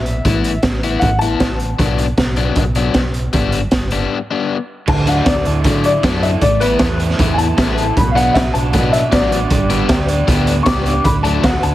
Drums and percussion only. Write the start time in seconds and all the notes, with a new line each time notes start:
0.06 closed hi-hat
0.25 kick, closed hi-hat
0.44 closed hi-hat
0.63 kick, snare, closed hi-hat
0.83 closed hi-hat
1.01 kick, closed hi-hat
1.21 closed hi-hat
1.40 kick, snare, closed hi-hat
1.60 closed hi-hat
1.79 kick, closed hi-hat
1.98 closed hi-hat
2.18 kick, snare, closed hi-hat
2.36 closed hi-hat
2.56 kick, closed hi-hat
2.75 closed hi-hat
2.94 kick, snare, closed hi-hat
3.14 closed hi-hat
3.33 kick, closed hi-hat
3.52 closed hi-hat
3.71 kick, snare, closed hi-hat
3.91 closed hi-hat
4.88 kick, crash
5.07 closed hi-hat
5.26 kick, snare, closed hi-hat
5.45 closed hi-hat
5.64 kick, closed hi-hat
5.84 closed hi-hat
6.03 kick, snare, closed hi-hat
6.23 closed hi-hat
6.42 kick, closed hi-hat
6.61 closed hi-hat
6.79 kick, snare, closed hi-hat
7.00 closed hi-hat
7.10 snare
7.19 kick, closed hi-hat
7.39 closed hi-hat
7.58 kick, snare, closed hi-hat
7.78 closed hi-hat
7.97 kick, closed hi-hat
8.17 closed hi-hat
8.35 kick, snare, closed hi-hat
8.55 closed hi-hat
8.73 kick, closed hi-hat
8.93 closed hi-hat
9.12 kick, snare, closed hi-hat
9.32 closed hi-hat
9.50 kick, closed hi-hat
9.70 closed hi-hat
9.89 kick, snare, closed hi-hat
10.08 closed hi-hat
10.28 kick, closed hi-hat
10.47 closed hi-hat
10.66 kick, snare, closed hi-hat
10.86 closed hi-hat
11.05 kick, closed hi-hat
11.25 closed hi-hat
11.44 kick, snare, closed hi-hat
11.63 closed hi-hat